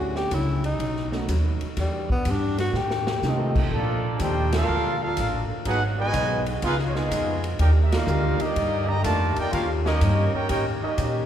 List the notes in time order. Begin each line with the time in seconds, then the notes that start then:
Already playing: D2 D3 F#3 A3 C#4 D4 E4 F#4
0.16 G4, snare
0.31 C#2 D3 F#3 C#4 E4, kick, hi-hat pedal, ride
0.64 D#4, ride
0.79 B1 B2 F#3 A3 D#4, kick, ride
0.96 snare
1.12 A3 B3 C#4 D#4 F#4, snare
1.28 D#2 B2 F#3 A3 D#4, kick, hi-hat pedal, ride
1.61 muted upright bass stroke, ride
1.77 E2 E3 G3 B3 D4 G4, kick, snare, ride
2.10 B3, kick
2.25 G2 E3 B3 D4 G4, kick, hi-hat pedal, ride
2.30 D4
2.58 F#4, snare, ride
2.73 F2 A2 D#3 A3 C4 G4, snare
2.91 snare
3.07 snare
3.22 F2 C3 D#3 A3 C4 D#4 F4 G4 A4 D#5, snare, hi-hat pedal
3.55 kick, crash
3.71 A#2 F3 A3 A#3 D4 F4 A4 D5, kick
3.75 D4
4.19 D#2 A#2 F3 A3 D4 D#4 G4 A4 C5 G5, kick, hi-hat pedal, ride
4.52 A#3 D4 F4 A4 A#4 F5, snare, ride
4.68 D2 A#2 F3 A3 D4
5.03 A#3 D4 F4 A4 A#4 F5
5.17 A1 A#2 F3 A3 D4, kick, hi-hat pedal, ride
5.50 muted upright bass stroke
5.65 G#1 G#2 F#3 B3 D#4 F#4 G#4 B4 F#5, kick, ride
5.98 B2 D#3 G#3 F#4 B4 D#5 G#5
6.13 B1 G#2 F#3 B3 D#4, kick, hi-hat pedal, ride
6.46 ride
6.62 C#2 C#3 F3 G#3 B3 D#4 F4 G#4 B4 F5, kick, ride
6.79 snare
6.87 C#5
6.95 G#3 B3 D#4 F4 G#4 D#5, snare
7.11 F2 C#3 F3 B3 D#4, kick, hi-hat pedal, ride
7.44 ride
7.59 D#2 D#3 A#3 D4 D#4 G4 A#4 D5 G5, kick, ride
7.84 E5
7.92 A#3 D#4 F4 A#4 D5 F5, snare, ride
8.07 D2 D#3 A#3 D4 G4, hi-hat pedal
8.38 G3 A#3 D#4 G4 D5 D#5, muted upright bass stroke, ride
8.56 G2 D#3 A#3 D4 G4, kick, ride
8.85 D3 G3 A#3 G4 D5 D#5 A#5
9.01 F2 A3 F4 A#4 D5 A5, kick, hi-hat pedal, ride
9.05 D#3 A#3 D4 G4
9.34 A#3 D4 D#4 G4 A#4 D5, muted upright bass stroke, ride
9.38 G5
9.50 D#2 D#3 C#4 F4 G4 A#4 F5, kick, ride
9.54 A#3 C#4 G4
9.84 G3 A#3 C#4 D#4 G4 A#4 D#5, snare
10.01 G2 D#3 A#3 C#4 G4, kick, hi-hat pedal, ride
10.32 A#3 C#4 D#4 G4 A#4 C#5 G5, muted upright bass stroke
10.49 A2 D#3 A#3 C#4 D#4 G4 A#4 C#5 G5, kick, ride
10.82 G3 A#3 C#4 D#4 G4 A#4 D#5, muted upright bass stroke
10.98 A#2 D#3 A#3 C#4 G4, kick, hi-hat pedal, ride